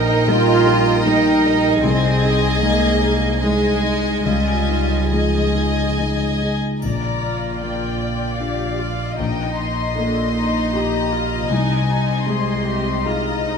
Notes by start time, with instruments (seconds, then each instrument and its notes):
Already playing: double bass section A#1, grand piano A#1 D#4 A#4, cello section D#4, viola section A#4, violin section D#5 G5
0.28 grand piano G3 D#4 A#4, cello section F4
0.66 grand piano D#4 A#4
1.05 grand piano G3 D#4 A#4, cello section D#4
1.46 grand piano D#4 A#4
1.81 double bass section C2, grand piano C2, cello section C4, viola section G#4, violin section D#5 G#5
2.23 grand piano D#4 G#4
2.61 grand piano G#3 D#4 G#4, cello section A#3
3.02 grand piano D#4 G#4
3.41 cello section G#3, grand piano G#3 D#4 G#4, viola section G#4, violin section D#5 G#5
3.83 grand piano D#4 G#4
4.26 grand piano C#2, double bass section C#2, cello section G3, viola section F4, violin section D#5 G#5
4.69 grand piano D#4 F4
5.11 cello section F3, grand piano G#3 D#4 G#4, viola section G#4, violin section D#5 G#5
5.55 grand piano D#4
5.99 grand piano G#3 D#4 G#4
6.42 grand piano D#4 G#4
6.81 double bass section A#1, grand piano A#1, cello section A#2, viola section F4, violin section D5 A#5, triangle
7.60 grand piano A#3, violin section D5 G5
8.39 grand piano D4 F4, viola section G4, violin section F5
8.79 viola section F4
9.18 double bass section A#1, grand piano A#1, cello section A#2, viola section D#4, violin section D#5 G5
9.58 violin section C6
9.97 viola section D3, grand piano A#3
10.36 viola section D#4
10.74 grand piano D#4 G4, viola section G4, violin section A#5
11.12 viola section F4
11.50 double bass section C2, grand piano C2, cello section C3, viola section D#4, violin section G#5
11.90 viola section D#4
12.25 grand piano G#3, viola section G#4, violin section C6
12.66 viola section G4
13.03 grand piano D#4 G#4, viola section F4, violin section D#5 A#5
13.45 viola section D#4